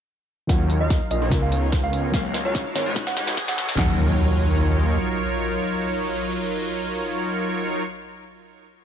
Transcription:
0.47 1.00 D#2 loud
0.47 1.27 D#3 medium
0.47 0.78 F#3 medium
0.47 1.29 F#3 medium
0.47 1.27 C#4 medium
0.47 0.78 D#4 medium
0.47 0.78 F4 medium
0.47 1.28 F4 medium
0.47 0.78 A#4 medium
0.47 0.78 C#5 medium
0.47 0.73 F#5 medium
0.47 kick medium
0.47 snare soft
0.47 closed hi-hat medium
0.47 riser medium
0.70 closed hi-hat medium
0.81 1.19 F#3 medium
0.81 1.19 D#4 medium
0.81 1.19 F4 medium
0.81 1.19 A#4 medium
0.81 1.04 D#5 medium
0.81 1.19 F5 medium
0.90 kick medium
0.90 snare soft
0.90 closed hi-hat medium
1.11 1.30 A#1 loud
1.11 1.34 D#5 medium
1.11 closed hi-hat medium
1.22 1.50 B3 medium
1.22 1.50 D#4 medium
1.22 1.50 F4 medium
1.22 1.50 A#4 medium
1.22 1.50 C#5 loud
1.30 2.13 C#2 medium
1.30 2.09 C#3 medium
1.30 2.09 B3 medium
1.30 2.10 D#4 medium
1.30 2.10 F4 medium
1.30 2.11 A#4 medium
1.30 kick medium
1.30 snare medium
1.30 closed hi-hat medium
1.42 1.73 F5 medium
1.52 1.81 B3 medium
1.52 1.81 D#4 medium
1.52 1.81 F4 medium
1.52 1.81 A#4 medium
1.52 1.81 C#5 loud
1.52 closed hi-hat medium
1.72 kick medium
1.72 snare medium
1.72 closed hi-hat medium
1.83 2.12 B3 medium
1.83 2.12 D#4 medium
1.83 2.12 F4 medium
1.83 2.12 A#4 medium
1.83 2.12 C#5 medium
1.83 2.06 F5 medium
1.93 closed hi-hat medium
2.12 2.64 C#2 loud
2.12 2.91 F#3 medium
2.12 2.43 G#3 medium
2.12 2.92 A#3 medium
2.12 2.43 F4 medium
2.12 2.43 F#4 medium
2.12 2.43 A#4 medium
2.12 2.43 C#5 medium
2.12 2.37 F5 medium
2.12 2.93 F5 medium
2.12 kick loud
2.12 snare medium
2.12 closed hi-hat medium
2.34 snare medium
2.34 closed hi-hat medium
2.45 2.84 G#3 medium
2.45 2.84 F4 medium
2.45 2.84 F#4 medium
2.45 2.84 A#4 medium
2.45 2.68 C#5 medium
2.45 2.84 F5 medium
2.55 kick medium
2.55 snare medium
2.55 closed hi-hat medium
2.75 2.94 G#1 loud
2.75 2.99 C#5 medium
2.75 snare medium
2.75 closed hi-hat medium
2.86 3.14 G#3 loud
2.86 3.14 D#4 medium
2.86 3.14 F#4 medium
2.86 3.14 B4 medium
2.86 3.14 C#5 loud
2.94 3.73 B2 medium
2.94 3.74 G#3 medium
2.94 3.75 C#4 medium
2.94 3.75 D#4 medium
2.94 kick loud
2.94 snare medium
2.94 closed hi-hat medium
3.07 3.37 F#5 medium
3.07 snare medium
3.17 3.45 G#3 medium
3.17 3.45 D#4 medium
3.17 3.45 F#4 medium
3.17 3.45 B4 medium
3.17 3.45 C#5 loud
3.17 snare loud
3.17 closed hi-hat medium
3.27 3.77 B1 medium
3.27 snare medium
3.37 kick loud
3.37 snare loud
3.37 closed hi-hat medium
3.48 3.76 G#3 medium
3.48 3.76 D#4 medium
3.48 3.76 F#4 medium
3.48 3.76 B4 medium
3.48 3.76 C#5 medium
3.48 3.71 F#5 medium
3.48 snare medium
3.58 snare loud
3.58 closed hi-hat medium
3.69 snare medium
3.75 4.98 D#2 loud
3.75 8.12 D#3 medium
3.75 7.83 F#3 medium
3.75 8.14 C#4 medium
3.75 7.83 D#4 medium
3.75 7.83 F4 medium
3.75 7.83 A#4 medium
3.75 7.83 C#5 medium
3.75 8.16 F#5 medium
3.75 kick loud
3.75 snare loud
3.75 clap medium
3.75 impact medium
3.79 8.18 F#3 loud
3.79 8.16 D#4 medium

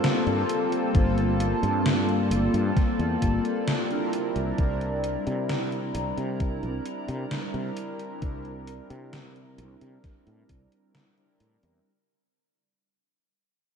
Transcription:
0.00 4.09 A#3 medium
0.00 4.09 F4 medium
0.00 0.91 C5 medium
0.00 4.09 A5 loud
0.00 snare loud
0.00 closed hi-hat soft
0.26 0.42 G2 loud
0.26 0.89 G3 medium
0.26 0.89 A#3 medium
0.26 0.89 C4 medium
0.26 0.89 F4 medium
0.26 0.90 A4 loud
0.26 closed hi-hat soft
0.49 closed hi-hat medium
0.72 closed hi-hat soft
0.93 1.52 G1 medium
0.93 3.16 G3 medium
0.93 3.16 A#3 medium
0.93 3.17 C4 medium
0.93 3.17 F4 medium
0.93 3.17 A4 medium
0.93 11.82 D5 medium
0.93 kick loud
0.93 closed hi-hat soft
1.18 closed hi-hat soft
1.40 closed hi-hat medium
1.63 2.32 G2 loud
1.63 closed hi-hat soft
1.86 snare loud
1.86 closed hi-hat medium
2.09 closed hi-hat soft
2.31 2.47 G1 loud
2.31 closed hi-hat medium
2.54 2.70 G2 loud
2.54 closed hi-hat medium
2.77 kick loud
2.77 snare soft
2.77 closed hi-hat medium
2.99 3.15 E2 loud
2.99 closed hi-hat soft
3.22 3.38 G1 medium
3.22 kick medium
3.22 closed hi-hat medium
3.45 closed hi-hat medium
3.68 snare loud
3.68 closed hi-hat soft
3.90 4.53 G3 medium
3.90 4.53 C4 medium
3.90 4.53 D4 medium
3.90 4.53 E4 medium
3.90 4.53 A#4 loud
3.90 closed hi-hat soft
4.13 11.82 E4 medium
4.13 11.82 A#5 loud
4.13 closed hi-hat medium
4.36 4.52 C2 medium
4.36 closed hi-hat medium
4.57 5.16 C2 loud
4.57 6.79 G3 medium
4.57 6.80 C4 medium
4.57 6.80 D4 medium
4.57 6.80 E4 medium
4.57 6.81 A#4 medium
4.57 kick loud
4.57 closed hi-hat medium
4.81 closed hi-hat soft
5.04 closed hi-hat medium
5.27 5.96 C3 loud
5.27 closed hi-hat medium
5.49 snare loud
5.49 closed hi-hat medium
5.72 closed hi-hat soft
5.95 6.11 C2 loud
5.95 closed hi-hat medium
6.17 6.64 C3 loud
6.17 closed hi-hat medium
6.40 kick loud
6.40 closed hi-hat soft
6.63 6.79 C2 medium
6.63 closed hi-hat soft
6.86 closed hi-hat medium
7.08 7.24 C3 loud
7.08 closed hi-hat medium
7.31 snare loud
7.31 closed hi-hat medium
7.53 7.70 C3 loud
7.53 8.16 G3 medium
7.53 8.16 C4 medium
7.53 8.17 D4 medium
7.53 8.17 E4 medium
7.53 8.17 A#4 loud
7.53 closed hi-hat soft
7.77 closed hi-hat medium
7.99 closed hi-hat medium
8.21 8.80 C2 loud
8.21 10.43 G3 medium
8.21 10.44 C4 medium
8.21 10.44 D4 medium
8.21 10.44 E4 medium
8.21 10.45 A#4 loud
8.21 kick loud
8.21 closed hi-hat medium
8.45 closed hi-hat soft
8.67 closed hi-hat medium
8.90 9.60 C3 loud
8.90 closed hi-hat medium
9.13 snare loud
9.13 closed hi-hat medium
9.36 closed hi-hat soft
9.58 9.74 C2 loud
9.58 closed hi-hat loud
9.81 9.97 C3 loud
9.81 closed hi-hat medium
10.04 kick loud
10.04 snare soft
10.04 closed hi-hat medium
10.27 10.43 A2 loud
10.27 closed hi-hat soft
10.49 10.65 C2 medium
10.49 kick medium
10.49 closed hi-hat medium
10.72 closed hi-hat medium
10.95 snare loud
10.95 closed hi-hat medium
11.17 11.80 G3 medium
11.17 11.80 C4 medium
11.17 11.80 D4 medium
11.17 11.80 E4 medium
11.17 11.81 A#4 loud
11.17 closed hi-hat soft
11.40 11.56 A2 medium
11.40 closed hi-hat loud
11.63 11.79 E2 loud
11.63 closed hi-hat medium

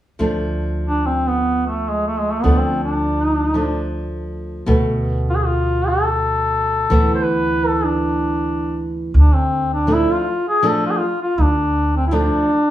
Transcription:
0.19 2.40 D2 medium
0.19 2.40 F3 medium
0.19 2.40 A3 medium
0.19 2.40 D4 medium
0.88 1.08 D4 medium
1.07 1.29 C4 medium
1.27 1.66 B3 medium
1.67 1.91 A3 medium
1.90 2.07 G#3 medium
2.07 2.21 A3 medium
2.20 2.33 G#3 medium
2.31 2.44 A3 medium
2.42 4.64 D2 medium
2.42 3.53 F3 soft
2.42 3.53 A3 soft
2.42 2.59 B3 medium
2.42 3.54 D4 medium
2.58 2.83 C4 medium
2.84 3.98 D4 medium
3.54 4.67 F3 soft
3.54 4.66 A3 soft
3.54 4.67 D4 soft
4.66 6.87 D2 medium
4.66 6.86 B2 medium
4.66 6.87 A3 medium
4.66 6.87 B3 medium
5.30 5.37 F4 medium
5.36 5.47 G#4 medium
5.46 5.90 F4 medium
5.88 7.14 A4 medium
6.90 9.10 D2 medium
6.90 9.10 E3 medium
6.90 9.10 A3 medium
6.90 9.11 B3 medium
7.15 7.24 C5 medium
7.23 7.69 B4 medium
7.67 7.85 A4 medium
7.84 8.88 D4 medium
9.14 10.04 D2 medium
9.14 9.37 D4 medium
9.35 9.71 C4 medium
9.74 9.94 D4 medium
9.87 10.25 F3 soft
9.87 10.26 A3 soft
9.87 10.26 D4 medium
9.93 10.12 E4 medium
10.11 10.47 F4 medium
10.49 10.68 G#4 medium
10.62 11.00 F3 medium
10.62 11.01 A3 soft
10.62 11.01 D4 medium
10.67 10.84 A4 medium
10.86 10.93 F4 medium
10.91 11.00 G#4 medium
10.99 11.21 F4 medium
11.22 11.43 F4 medium
11.38 12.28 D2 medium
11.38 11.96 D4 medium
11.97 12.06 C4 medium
12.07 12.49 F3 medium
12.07 12.16 E4 soft
12.12 12.50 A3 soft
12.12 12.50 D4 medium
12.12 12.71 D4 medium

